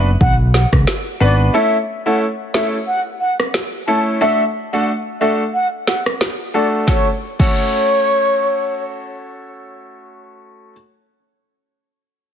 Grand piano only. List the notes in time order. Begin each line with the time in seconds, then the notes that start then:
1.20 B3 D4 F#4 B4
1.54 A3 C#4 E4 A4
2.06 A3 C#4 E4 A4
2.54 A3 C#4 E4 A4
3.87 A3 C#4 E4 A4
4.21 A3 D4 F#4 A4
4.73 A3 D4 F#4 A4
5.21 A3 D4 F#4 A4
6.54 A3 D4 F#4 A4
6.87 A3 C#4 F#4 A4
7.39 A3 C#4 F#4 A4